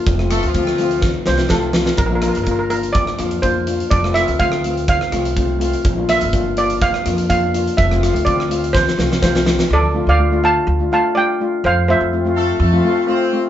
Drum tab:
HH |x-xxx-xx--------|x-xxx-xxx-xxx-xx|x-xxx-xxx-xxx-xx|x-xxx-xxx-xxx-xx|
SD |-rr--r--o-ooo-oo|--r------rr-----|-rr--r---rr-----|--r------rr-----|
BD |o---o---o---o---|o---o---o---o---|o---o---o---o---|o---o---o---o---|

HH |x-xxx-xx--------|----------------|----------------|
SD |-rr--r--oooooooo|----------------|----------------|
BD |o---o---o---o---|----------------|----------------|